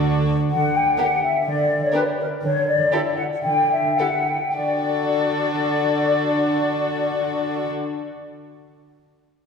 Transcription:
0.00 0.27 D2 soft
0.00 0.27 D3 soft
0.00 0.28 D4 soft
0.00 0.28 F#4 soft
0.00 0.28 A4 soft
0.51 0.90 D3 soft
0.51 0.74 F#5 medium
0.75 0.98 G5 soft
0.98 1.07 D4 soft
0.98 1.07 G4 soft
0.98 1.06 A#4 soft
0.98 1.22 F#5 medium
1.24 1.46 E5 soft
1.46 1.86 D3 soft
1.46 1.81 D5 medium
1.85 1.95 C#5 soft
1.93 2.02 D4 soft
1.93 2.02 G4 soft
1.93 2.01 A#4 soft
1.93 2.02 B4 medium
2.20 2.26 A#4 medium
2.43 2.83 D3 soft
2.43 2.67 C#5 medium
2.68 2.91 D5 medium
2.92 3.01 E4 soft
2.92 3.00 G4 soft
2.92 3.01 A4 soft
2.92 2.99 E5 medium
3.17 3.23 F#5 soft
3.44 3.89 D3 soft
3.44 3.70 G5 medium
3.71 3.98 E5 soft
3.99 4.08 E4 soft
3.99 4.07 G4 soft
3.99 4.07 A4 soft
3.99 4.28 F#5 medium
4.28 4.57 G5 soft
4.56 7.70 D3 soft
4.56 7.70 D4 soft
4.56 7.70 F#4 soft
4.56 7.69 A4 soft
4.56 7.69 D5 soft

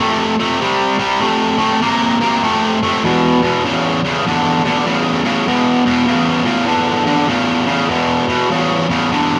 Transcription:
0.00 0.34 C3 medium
0.00 0.34 A3 medium
0.39 0.59 C3 medium
0.39 0.59 A3 medium
0.61 0.95 C3 medium
0.61 0.95 G3 medium
0.99 1.19 C3 medium
0.99 1.19 G3 medium
1.21 1.56 C3 medium
1.21 1.56 A3 loud
1.58 1.79 C3 medium
1.58 1.79 A3 medium
1.82 2.17 C3 medium
1.82 2.17 A#3 medium
2.20 2.41 C3 medium
2.20 2.41 A#3 medium
2.43 2.78 C3 medium
2.43 2.78 A3 medium
2.83 3.02 C3 medium
2.83 3.02 A3 medium
3.04 3.39 E2 medium
3.04 3.39 B2 medium
3.42 3.62 E2 medium
3.42 3.63 B2 medium
3.65 4.00 E2 medium
3.65 4.00 C#3 loud
4.05 4.24 E2 medium
4.05 4.24 C#3 medium
4.27 4.61 E2 medium
4.27 4.61 D3 medium
4.64 4.84 E2 medium
4.64 4.85 D3 medium
4.86 5.21 E2 medium
4.86 5.21 C#3 loud
5.24 5.45 E2 medium
5.24 5.45 C#3 medium
5.47 5.82 E2 medium
5.47 5.82 B2 medium
5.86 6.06 E2 medium
5.86 6.06 B2 medium
6.07 6.43 E2 medium
6.07 6.43 C#3 medium
6.45 6.66 E2 medium
6.45 6.66 C#3 medium
6.67 7.03 E2 medium
6.67 7.03 D3 loud
7.06 7.27 E2 medium
7.06 7.27 D3 medium
7.29 7.64 E2 medium
7.29 7.64 C#3 medium
7.67 7.88 E2 medium
7.67 7.88 C#3 medium
7.89 8.25 E2 medium
7.89 8.25 B2 medium
8.28 8.49 E2 medium
8.28 8.49 B2 medium
8.51 8.86 E2 medium
8.51 8.86 C#3 loud
8.89 9.10 E2 medium
8.89 9.10 C#3 medium
9.12 9.39 E2 medium
9.12 9.39 D3 loud

